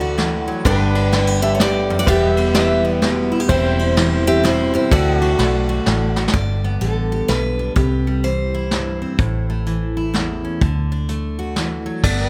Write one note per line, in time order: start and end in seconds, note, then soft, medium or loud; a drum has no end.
0.00 0.50 D2 medium
0.00 0.17 D3 medium
0.00 0.63 A3 medium
0.00 0.64 D4 medium
0.00 0.14 F#4 medium
0.00 0.63 F#4 medium
0.00 0.64 A4 medium
0.00 0.14 D5 medium
0.00 0.64 D5 medium
0.00 0.65 F#5 medium
0.18 0.47 E3 medium
0.18 snare medium
0.18 ride medium
0.48 0.65 F#3 medium
0.65 1.92 G1 loud
0.65 1.59 G2 medium
0.65 2.05 B3 medium
0.65 1.39 D4 medium
0.65 0.94 D4 medium
0.65 1.12 G4 medium
0.65 2.05 B4 medium
0.65 1.39 B4 medium
0.65 2.07 D5 medium
0.65 2.07 G5 medium
0.65 kick loud
0.65 ride medium
0.95 1.42 D4 medium
0.95 ride medium
1.12 2.07 D3 medium
1.12 1.27 E4 medium
1.12 snare medium
1.12 ride medium
1.27 2.07 G4 medium
1.42 2.05 D4 medium
1.42 1.54 G4 medium
1.42 1.54 E5 medium
1.55 1.60 C#5 medium
1.60 1.90 G2 medium
1.60 1.96 G4 medium
1.60 1.98 D5 medium
1.60 snare medium
1.60 ride medium
1.90 2.07 F#2 medium
1.99 2.07 F#4 medium
1.99 2.08 D5 medium
2.07 3.34 E1 medium
2.07 3.48 E2 medium
2.07 3.49 G3 medium
2.07 2.37 B3 medium
2.07 2.52 G4 medium
2.07 2.55 G4 medium
2.07 3.47 B4 medium
2.07 2.33 D5 medium
2.07 2.54 E5 loud
2.07 3.49 G5 medium
2.07 kick loud
2.07 ride medium
2.33 3.48 E5 medium
2.33 ride medium
2.38 2.83 B3 medium
2.54 3.47 E3 medium
2.54 2.99 G4 medium
2.54 3.31 G4 medium
2.54 2.99 E5 medium
2.54 snare medium
2.54 ride medium
2.85 3.49 B3 medium
3.02 3.47 B2 medium
3.02 snare medium
3.02 ride medium
3.32 3.40 E4 medium
3.40 3.49 G4 medium
3.49 4.76 E1 loud
3.49 4.91 E2 medium
3.49 4.91 G3 medium
3.49 3.78 C4 medium
3.49 4.23 E4 medium
3.49 3.97 E4 medium
3.49 4.90 C5 medium
3.49 4.28 C5 medium
3.49 4.90 E5 medium
3.49 4.91 G5 medium
3.49 kick loud
3.49 ride medium
3.79 4.26 C4 medium
3.79 ride medium
3.97 4.89 E3 medium
3.97 4.92 E4 medium
3.97 snare medium
3.97 ride medium
4.27 4.89 C4 medium
4.27 4.43 G4 medium
4.27 4.45 E5 medium
4.43 4.73 B2 medium
4.43 4.72 E4 medium
4.43 4.74 C5 medium
4.43 snare medium
4.43 ride medium
4.74 4.91 C3 medium
4.74 4.91 E4 medium
4.74 4.92 C5 medium
4.91 5.34 D2 loud
4.91 6.80 D3 medium
4.91 6.31 D4 medium
4.91 6.12 F#4 medium
4.91 5.20 F#4 medium
4.91 6.33 A4 medium
4.91 6.12 D5 medium
4.91 5.18 E5 medium
4.91 5.14 G5 medium
4.91 kick loud
4.91 ride medium
5.14 6.33 D5 medium
5.14 6.34 F#5 medium
5.21 5.38 F#4 medium
5.21 ride medium
5.39 5.79 B1 medium
5.39 6.31 A3 medium
5.39 5.68 F#4 medium
5.39 snare medium
5.39 ride medium
5.69 6.16 F#4 medium
5.86 6.27 A1 medium
5.86 6.34 A2 medium
5.86 snare medium
5.86 ride soft
6.16 6.32 F#4 medium
6.16 snare medium
6.28 snare medium
6.33 6.76 G1 medium
6.33 7.28 G2 medium
6.33 6.82 D5 medium
6.33 kick loud
6.33 closed hi-hat medium
6.64 7.74 B3 medium
6.81 7.21 A1 medium
6.81 7.76 D3 soft
6.81 7.28 A4 medium
6.81 closed hi-hat medium
7.12 7.74 G4 medium
7.28 7.69 B1 medium
7.28 7.74 G2 medium
7.28 7.75 B4 medium
7.28 snare medium
7.28 closed hi-hat medium
7.59 7.74 D4 medium
7.76 9.04 C2 medium
7.76 8.24 C3 medium
7.76 8.25 G4 medium
7.76 kick loud
7.76 closed hi-hat medium
8.07 9.19 G3 medium
8.24 9.17 E3 soft
8.24 8.97 C5 medium
8.24 closed hi-hat medium
8.54 9.96 E4 medium
8.71 9.17 G2 medium
8.71 snare medium
8.71 closed hi-hat soft
9.02 9.17 C4 medium
9.19 10.46 A1 medium
9.19 10.14 A2 medium
9.19 kick loud
9.19 closed hi-hat medium
9.50 10.60 A3 medium
9.66 10.59 E3 medium
9.66 closed hi-hat medium
9.97 10.61 E4 medium
10.14 10.61 E2 medium
10.14 snare medium
10.14 closed hi-hat soft
10.45 10.59 C#4 medium
10.61 11.89 D2 medium
10.61 11.56 D3 medium
10.61 kick loud
10.61 closed hi-hat medium
10.92 12.02 D4 medium
11.09 12.02 A3 medium
11.09 closed hi-hat medium
11.39 12.02 F#4 medium
11.56 11.85 E3 medium
11.56 snare medium
11.56 closed hi-hat medium
11.86 12.03 F#3 medium
12.03 12.29 G1 medium
12.03 12.29 G2 medium
12.03 12.29 B3 medium
12.03 12.29 A4 medium
12.03 12.29 D5 medium
12.03 12.26 F#5 medium
12.03 kick loud
12.03 crash loud
12.26 12.29 G5 medium